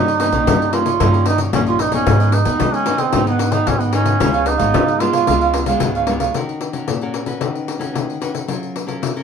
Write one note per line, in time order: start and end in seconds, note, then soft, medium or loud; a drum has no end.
0.00 0.28 G2 loud
0.00 0.44 G2 medium
0.00 0.75 D#4 loud
0.06 0.19 G4 medium
0.06 0.19 C#5 medium
0.06 0.19 D#5 medium
0.06 pandeiro soft
0.19 0.29 D#3 medium
0.19 0.29 A#3 medium
0.19 0.29 C#4 medium
0.19 muted cavaquinho stroke soft
0.19 pandeiro medium
0.32 0.44 A#1 medium
0.32 0.69 D#3 medium
0.32 0.69 A#3 medium
0.32 0.70 C#4 medium
0.32 0.46 G4 medium
0.32 0.46 C#5 medium
0.32 0.45 D#5 medium
0.32 pandeiro medium
0.47 0.98 G2 medium
0.47 0.70 G3 loud
0.47 0.59 D#4 medium
0.47 0.59 G4 medium
0.47 0.60 C#5 medium
0.47 0.60 D#5 medium
0.47 pandeiro medium
0.61 0.87 G4 soft
0.61 0.86 C#5 soft
0.61 0.85 D#5 soft
0.61 pandeiro soft
0.73 0.89 D#3 medium
0.73 0.89 A#3 medium
0.73 0.89 C#4 medium
0.73 1.27 F4 loud
0.73 pandeiro medium
0.86 1.00 G4 medium
0.86 0.99 C#5 medium
0.86 0.99 D#5 medium
0.86 pandeiro medium
1.00 1.46 G2 medium
1.00 1.51 G2 medium
1.00 1.50 D#3 medium
1.00 1.50 A#3 medium
1.00 1.50 C#4 medium
1.00 1.12 D#4 medium
1.00 1.13 G4 soft
1.00 1.13 C#5 medium
1.00 1.13 D#5 medium
1.00 pandeiro medium
1.14 1.26 G4 medium
1.14 1.26 C#5 medium
1.14 1.26 D#5 medium
1.14 pandeiro soft
1.26 1.39 D#4 loud
1.26 muted cavaquinho stroke soft
1.26 pandeiro medium
1.38 1.66 G4 medium
1.38 1.66 C#5 medium
1.38 1.65 D#5 medium
1.38 pandeiro medium
1.53 1.99 A#1 medium
1.53 2.04 G2 medium
1.53 1.78 D#3 medium
1.53 1.79 A#3 medium
1.53 1.60 C#4 medium
1.53 1.79 C#4 medium
1.53 pandeiro medium
1.66 1.82 F4 medium
1.66 1.79 G4 medium
1.66 1.80 C#5 medium
1.66 1.79 D#5 medium
1.66 pandeiro soft
1.79 1.92 D#4 soft
1.79 1.94 D#4 medium
1.79 1.93 G4 soft
1.79 1.92 C#5 medium
1.79 1.92 D#5 medium
1.79 pandeiro medium
1.92 2.29 D#3 medium
1.92 2.29 B3 medium
1.92 2.35 C#4 medium
1.92 2.30 D#4 medium
1.92 2.06 G4 medium
1.92 2.06 C#5 medium
1.92 2.05 D#5 medium
1.92 pandeiro medium
2.06 2.57 G#2 medium
2.06 2.41 G#2 loud
2.06 2.20 D#4 medium
2.06 2.20 G#4 medium
2.06 2.20 B4 soft
2.06 2.19 D#5 medium
2.06 pandeiro medium
2.20 2.32 G#4 medium
2.20 2.33 B4 medium
2.20 2.33 D#5 medium
2.20 pandeiro soft
2.32 2.76 D#4 medium
2.32 muted cavaquinho stroke soft
2.32 pandeiro medium
2.45 2.57 D#2 medium
2.45 2.60 D#3 medium
2.45 2.82 B3 medium
2.45 2.83 D#4 medium
2.45 2.59 G#4 soft
2.45 2.59 B4 medium
2.45 2.58 D#5 medium
2.45 pandeiro medium
2.60 2.86 D#3 medium
2.60 2.83 G#3 loud
2.60 2.73 D#4 medium
2.60 2.73 G#4 medium
2.60 2.73 B4 medium
2.60 2.72 D#5 medium
2.60 pandeiro medium
2.73 3.01 C#4 loud
2.73 3.00 G#4 soft
2.73 2.99 B4 soft
2.73 2.98 D#5 medium
2.73 pandeiro soft
2.86 3.10 D#3 medium
2.86 3.10 B3 medium
2.86 3.10 D#4 medium
2.86 pandeiro medium
2.98 3.27 C4 medium
2.98 3.13 G#4 medium
2.98 3.13 B4 medium
2.98 3.12 D#5 medium
2.98 pandeiro medium
3.13 3.59 G#2 medium
3.13 3.65 G#2 medium
3.13 3.39 D#3 medium
3.13 3.40 B3 medium
3.13 3.26 D#4 medium
3.13 3.40 D#4 medium
3.13 3.26 G#4 medium
3.13 3.26 B4 medium
3.13 3.26 D#5 medium
3.13 pandeiro medium
3.27 3.54 B3 medium
3.27 3.39 G#4 medium
3.27 3.39 B4 medium
3.27 3.39 D#5 medium
3.27 pandeiro soft
3.39 pandeiro medium
3.52 3.66 D#3 medium
3.52 3.90 B3 medium
3.52 3.69 D#4 medium
3.52 3.90 D#4 medium
3.52 3.79 G#4 medium
3.52 3.79 B4 medium
3.52 3.78 D#5 medium
3.52 pandeiro medium
3.67 4.13 G#2 loud
3.67 3.92 D#3 medium
3.67 3.82 C#4 medium
3.67 pandeiro medium
3.79 3.93 B3 medium
3.79 3.91 G#4 soft
3.79 3.92 B4 medium
3.79 3.92 D#5 medium
3.79 pandeiro soft
3.91 4.16 D#3 medium
3.91 4.16 B3 medium
3.91 4.49 C#4 loud
3.91 4.05 D#4 soft
3.91 4.17 D#4 medium
3.91 4.05 G#4 medium
3.91 4.04 B4 medium
3.91 4.04 D#5 medium
3.91 pandeiro medium
4.05 4.19 G#4 medium
4.05 4.19 B4 medium
4.05 4.18 D#5 medium
4.05 pandeiro medium
4.20 4.55 C#2 loud
4.20 4.72 C#3 medium
4.20 4.56 G#3 medium
4.20 4.57 B3 medium
4.20 4.32 F4 medium
4.20 4.57 F4 medium
4.20 4.33 B4 medium
4.20 4.33 C#5 medium
4.20 4.32 F5 medium
4.20 pandeiro medium
4.33 4.45 B4 medium
4.33 4.45 C#5 medium
4.33 4.45 F5 medium
4.33 pandeiro soft
4.45 5.02 D#4 loud
4.45 muted cavaquinho stroke soft
4.45 pandeiro medium
4.57 4.72 G#1 medium
4.57 4.96 G#3 medium
4.57 4.96 B3 medium
4.57 4.96 F4 medium
4.57 4.72 B4 medium
4.57 4.72 C#5 medium
4.57 4.71 F5 medium
4.57 pandeiro medium
4.72 5.25 G#2 medium
4.72 4.97 C#3 loud
4.72 4.86 F4 medium
4.72 4.86 B4 medium
4.72 4.86 C#5 medium
4.72 4.85 F5 medium
4.72 pandeiro loud
4.87 5.13 B4 soft
4.87 5.12 C#5 soft
4.87 5.11 F5 soft
4.87 pandeiro soft
5.00 5.23 G#3 medium
5.00 5.24 B3 medium
5.00 5.81 F4 loud
5.00 5.24 F4 medium
5.00 pandeiro medium
5.13 5.26 B4 medium
5.13 5.26 C#5 medium
5.13 5.26 F5 medium
5.13 pandeiro medium
5.27 5.73 C#2 medium
5.27 5.79 C#3 medium
5.27 5.64 G#3 medium
5.27 5.64 B3 medium
5.27 5.40 F4 medium
5.27 5.65 F4 medium
5.27 5.40 B4 medium
5.27 5.40 C#5 medium
5.27 5.40 F5 medium
5.27 pandeiro medium
5.41 5.53 B4 medium
5.41 5.53 C#5 medium
5.41 5.53 F5 medium
5.41 pandeiro soft
5.54 muted cavaquinho stroke soft
5.54 pandeiro medium
5.66 6.04 G#3 medium
5.66 6.04 B3 medium
5.66 6.04 F4 medium
5.66 5.94 B4 medium
5.66 5.93 C#5 medium
5.66 5.93 F5 medium
5.66 pandeiro medium
5.80 6.27 C#2 medium
5.80 6.33 G#2 medium
5.80 pandeiro medium
5.95 6.06 B4 medium
5.95 6.07 C#5 medium
5.95 6.07 F5 medium
5.95 pandeiro soft
6.07 6.31 G#3 medium
6.07 6.31 B3 medium
6.07 6.20 F4 soft
6.07 6.31 F4 medium
6.07 6.20 B4 soft
6.07 6.20 C#5 medium
6.07 6.19 F5 medium
6.07 pandeiro medium
6.20 6.34 B4 medium
6.20 6.33 C#5 medium
6.20 6.33 F5 medium
6.20 pandeiro medium
6.34 6.86 D#3 medium
6.34 6.60 C#4 soft
6.34 6.60 F#4 soft
6.34 6.61 A#4 medium
6.34 pandeiro medium
6.49 pandeiro soft
6.61 pandeiro medium
6.73 6.97 C#4 soft
6.73 6.97 F#4 soft
6.73 6.97 A#4 medium
6.73 pandeiro medium
6.88 7.39 A#2 medium
6.88 pandeiro medium
7.01 7.24 C#4 medium
7.01 7.24 F#4 medium
7.01 7.25 A#4 medium
7.01 pandeiro soft
7.14 pandeiro medium
7.26 7.77 C#4 medium
7.26 7.77 F#4 medium
7.26 7.77 B4 medium
7.26 pandeiro soft
7.41 7.92 D#3 medium
7.41 pandeiro medium
7.55 pandeiro soft
7.68 pandeiro medium
7.79 8.17 C#4 medium
7.79 8.17 F#4 medium
7.79 8.17 B4 medium
7.79 pandeiro medium
7.94 8.46 D#3 medium
7.94 pandeiro medium
8.10 pandeiro soft
8.21 8.44 C#4 soft
8.21 8.44 F#4 medium
8.21 8.45 B4 medium
8.21 pandeiro medium
8.35 pandeiro medium
8.48 9.00 F#3 medium
8.48 8.74 C#4 soft
8.48 8.74 F4 soft
8.48 8.74 A#4 soft
8.48 pandeiro medium
8.63 pandeiro soft
8.76 pandeiro medium
8.87 9.11 C#4 medium
8.87 9.11 F4 soft
8.87 9.11 A#4 medium
8.87 pandeiro medium
9.02 9.23 C#3 medium
9.02 pandeiro medium
9.16 9.23 C#4 medium
9.16 9.23 F4 medium
9.16 9.23 A#4 medium
9.16 pandeiro soft